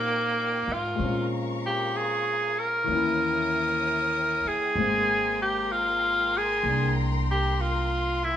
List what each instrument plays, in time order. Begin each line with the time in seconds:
Already playing: upright bass A#2, grand piano G3 A#3 C4 D#4 F4 G4 D5, tenor saxophone A#3, string section A#4 D5 G5 D6
0.68 upright bass G#2
0.73 tenor saxophone F4
0.95 grand piano G#3 C4, string section A#5
0.99 upright bass A#2, grand piano C#4, string section F5 C#6
1.06 grand piano F4
1.66 tenor saxophone G4
1.96 tenor saxophone G#4
2.59 tenor saxophone A#4
2.84 upright bass D#2, grand piano E3, string section D#6
2.88 grand piano A#3 C#4, string section C#5 E5 G5
2.95 grand piano E4
4.45 tenor saxophone G#4, muted upright bass stroke
4.75 upright bass G#1, grand piano G#3 A#3 C4, string section A#4 A#5 C6
5.42 tenor saxophone G4
5.72 tenor saxophone F4
6.38 tenor saxophone G#4
6.63 upright bass C2, grand piano A#3 D4
7.31 tenor saxophone G4
7.61 tenor saxophone F4
8.24 tenor saxophone E4